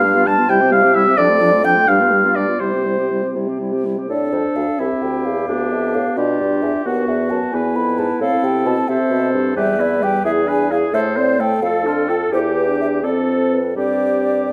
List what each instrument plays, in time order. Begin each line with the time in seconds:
Already playing: bassoon G2, flute F5, oboe F5
0.04 french horn G3, clarinet D4
0.15 french horn B3, clarinet F4
0.27 french horn G3, clarinet D4, flute A5, oboe A5
0.38 french horn B3, clarinet F4
0.49 bassoon C3, french horn G3, clarinet E4, flute G5, oboe G5
0.60 french horn C4, clarinet G4
0.72 french horn G3, clarinet E4, flute F5, oboe F5
0.82 french horn C4, clarinet G4
0.95 french horn G3, clarinet E4, flute E5, oboe E5
1.06 french horn C4, clarinet G4
1.17 bassoon F2, french horn F3, clarinet D4, oboe D5, flute D5
1.29 french horn A3, clarinet F4
1.41 french horn F3, clarinet D4
1.52 french horn A3, clarinet F4
1.64 french horn F3, clarinet D4, flute G5, oboe G5
1.76 french horn A3, clarinet F4
1.88 bassoon G2, french horn G3, clarinet D4, oboe F5, flute F5
2.00 french horn B3, clarinet F4
2.12 french horn G3, clarinet D4
2.24 french horn B3, clarinet F4
2.36 french horn G3, clarinet D4, oboe D5, flute D5
2.48 french horn B3, clarinet F4
2.60 bassoon C3, french horn G3, clarinet E4, oboe C5, flute C5
2.73 french horn C4, clarinet G4
2.85 french horn G3, clarinet E4
2.98 french horn C4, clarinet G4
3.11 french horn G3, clarinet E4
3.23 french horn C4, clarinet G4
3.35 bassoon C3, french horn G3, clarinet E4
3.47 french horn C4, clarinet G4
3.60 french horn G3, clarinet E4
3.72 french horn C4, clarinet G4
3.85 french horn G3, clarinet E4
3.98 french horn C4, clarinet G4
4.09 bassoon A2, french horn D4, oboe A4, flute D5
4.32 bassoon F2, flute C5
4.56 bassoon D2, flute F5
4.79 bassoon C2, french horn C4, oboe E4, clarinet G4, flute E5
5.02 bassoon D2, flute G5
5.25 bassoon E2, flute F5
5.48 bassoon D2, french horn B3, oboe D4
5.72 bassoon F2, flute E5
5.94 bassoon A2, flute F5
6.17 bassoon B2, french horn D4, clarinet F4, oboe G4, flute D5
6.39 bassoon G2
6.62 bassoon E2, flute E5
6.85 bassoon D#2, french horn B3, clarinet F#4, oboe F#4, flute F#5
7.07 bassoon E2, flute E5
7.30 bassoon F#2, flute A5
7.53 bassoon E2, french horn B3, clarinet E4, oboe B4, flute G#5
7.76 bassoon F2, flute B5
7.99 bassoon G#2, flute A5
8.21 bassoon A2, french horn C4, oboe A4, flute F5
8.43 bassoon C3, flute G5
8.66 bassoon B2, flute A5
8.88 bassoon C3, french horn C4, oboe A4, clarinet C5, flute E5
9.10 bassoon B2
9.34 bassoon G2
9.56 bassoon E2, french horn G3, oboe G4, clarinet B4, flute E5
9.79 french horn B3, oboe E4, flute D5
10.02 french horn G3, oboe G4, flute G5
10.25 bassoon E2, french horn E4, oboe G#4, clarinet G#4, flute E5
10.48 french horn D4, oboe B4, flute G#5
10.71 french horn E4, oboe G#4, flute F5
10.93 bassoon A2, french horn A3, oboe A4, clarinet C5, flute E5
11.17 french horn C4, oboe C5, flute D5
11.40 french horn A3, oboe A4, flute G5
11.62 bassoon F2, french horn F4, oboe A4, clarinet A4, flute F5
11.86 french horn D4, oboe F4, flute A5
12.09 french horn F4, oboe A4, flute G5
12.33 bassoon E2, french horn E4, clarinet G4, oboe G4, flute C5
12.56 flute B4
12.68 french horn D4
12.80 flute E5
13.03 bassoon F2, french horn C4, clarinet A4, oboe A4, flute D5
13.28 flute C5
13.52 flute B4
13.76 bassoon G2, french horn C4, oboe G4, clarinet G4, flute D5